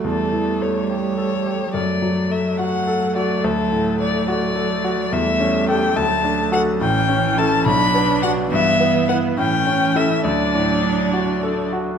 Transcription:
<<
  \new Staff \with { instrumentName = "Violin" } { \time 6/8 \key d \major \tempo 4. = 71 a'4 cis''8 cis''4. | d''4 e''8 fis''4 d''8 | a'4 d''8 d''4. | e''4 g''8 a''4 fis''8 |
g''4 a''8 b''4 fis''8 | e''4 fis''8 g''4 e''8 | d''2~ d''8 r8 | }
  \new Staff \with { instrumentName = "Grand piano" } { \time 6/8 \key d \major e,8 e8 a8 g'8 a'8 g'8 | fis,8 fis8 a8 fis'8 a'8 fis'8 | d,8 a,8 a8 fis'8 a'8 fis'8 | e,8 cis'8 <g' a'>8 d,8 d'8 <fis' a'>8 |
a,,8 cis'8 <e' a'>8 b,,8 b8 <d' fis'>8 | g,8 b8 <e' b'>8 a,8 cis'8 <e' a'>8 | d,8 a,8 d'8 fis'8 a'8 fis'8 | }
  \new Staff \with { instrumentName = "Viola" } { \time 6/8 \key d \major a2. | a2.~ | a2. | a2. |
cis'4. d'4. | b4. cis'4. | d'2~ d'8 r8 | }
  \new Staff \with { instrumentName = "Cello" } { \clef bass \time 6/8 \key d \major g2. | fis2.~ | fis2. | g4. fis4. |
e4. fis4. | e4. e4. | fis2~ fis8 r8 | }
>>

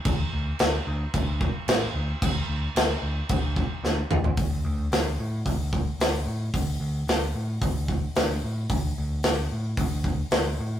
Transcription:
<<
  \new Staff \with { instrumentName = "Picked electric bass" } { \clef bass \time 4/4 \key c \lydian \tempo 4 = 111 d,8 d,8 d,8 d,8 d,4 a,,8 d,8 | d,8 d,8 d,8 d,8 d,4 d,8 d,8 | d,8 d,8 d,8 a,8 d,4 d,8 a,8 | d,8 d,8 d,8 a,8 d,4 d,8 a,8 |
d,8 d,8 d,8 a,8 d,4 d,8 a,8 | }
  \new DrumStaff \with { instrumentName = "Drums" } \drummode { \time 4/4 <cymc bd>4 <cymc sn>4 <cymc bd>8 bd8 <cymc sn>4 | <cymc bd>4 <cymc sn>4 <cymc bd>8 bd8 sn8 toml16 tomfh16 | <hho bd>4 <hho sn>4 <hho bd>8 bd8 <hho sn>4 | <hho bd>4 <hho sn>4 <hho bd>8 bd8 <hho sn>4 |
<hho bd>4 <hho sn>4 <hho bd>8 bd8 <hho sn>4 | }
>>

